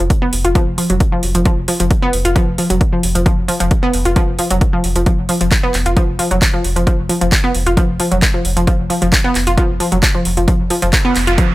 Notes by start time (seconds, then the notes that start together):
0.10 kick, closed hi-hat
0.22 B3
0.33 F1, open hi-hat
0.45 F1 F4, closed hi-hat
0.55 F3, kick, closed hi-hat
0.67 F1
0.78 F3, open hi-hat
0.90 F1 F#3, closed hi-hat
1.00 kick, closed hi-hat
1.12 F3
1.23 F1, open hi-hat
1.35 F1 F3, closed hi-hat
1.45 F3, kick, closed hi-hat
1.57 F1
1.68 F3, open hi-hat
1.80 F1 F3, closed hi-hat
1.91 kick, closed hi-hat
2.02 B3
2.13 F1, open hi-hat
2.25 F1 F4, closed hi-hat
2.36 F3, kick, closed hi-hat
2.47 F1
2.58 F3, open hi-hat
2.70 F1 F#3, closed hi-hat
2.81 kick, closed hi-hat
2.93 F3
3.03 F1, open hi-hat
3.15 F1 F3, closed hi-hat
3.26 F3, kick, closed hi-hat
3.38 F1
3.48 F3, open hi-hat
3.60 F1 F3, closed hi-hat
3.71 kick, closed hi-hat
3.83 B3
3.93 F1, open hi-hat
4.05 F1 F4, closed hi-hat
4.16 F3, kick, closed hi-hat
4.28 F1
4.39 F3, open hi-hat
4.50 F1 F#3, closed hi-hat
4.61 kick, closed hi-hat
4.73 F3
4.84 F1, open hi-hat
4.96 F1 F3, closed hi-hat
5.06 F3, kick, closed hi-hat
5.18 F1
5.29 F3, open hi-hat
5.41 F1 F3, closed hi-hat
5.52 kick, clap, closed hi-hat
5.63 B3
5.74 F1, clap, open hi-hat
5.86 F1 F4, closed hi-hat
5.97 F3, kick, closed hi-hat
6.08 F1
6.19 F3, open hi-hat
6.31 F1 F#3, closed hi-hat
6.42 kick, clap, closed hi-hat
6.54 F3
6.64 F1, open hi-hat
6.76 F1 F3, closed hi-hat
6.87 F3, kick, closed hi-hat
6.99 F1
7.09 F3, open hi-hat
7.21 F1 F3, closed hi-hat
7.32 kick, clap, closed hi-hat
7.44 B3
7.54 F1, open hi-hat
7.66 F1 F4, closed hi-hat
7.77 F3, kick, closed hi-hat
7.89 F1
8.00 F3, open hi-hat
8.11 F1 F#3, closed hi-hat
8.22 kick, clap, closed hi-hat
8.34 F3
8.45 F1, open hi-hat
8.57 F1 F3, closed hi-hat
8.67 F3, kick, closed hi-hat
8.79 F1
8.90 F3, open hi-hat
9.02 F1 F3, closed hi-hat
9.12 kick, clap, closed hi-hat
9.24 B3
9.35 F1, clap, open hi-hat
9.47 F1 F4, closed hi-hat
9.58 F3, kick, closed hi-hat
9.70 F1
9.80 F3, open hi-hat
9.92 F1 F#3, closed hi-hat
10.03 kick, clap, closed hi-hat
10.15 F3
10.25 F1, open hi-hat
10.37 F1 F3, closed hi-hat
10.48 F3, kick, closed hi-hat, noise sweep
10.60 F1
10.70 F3, open hi-hat
10.82 F1 F3, closed hi-hat
10.93 kick, clap, closed hi-hat
11.05 B3
11.16 F1, clap, open hi-hat
11.27 F1 F4, closed hi-hat
11.38 F3, kick, closed hi-hat
11.50 F1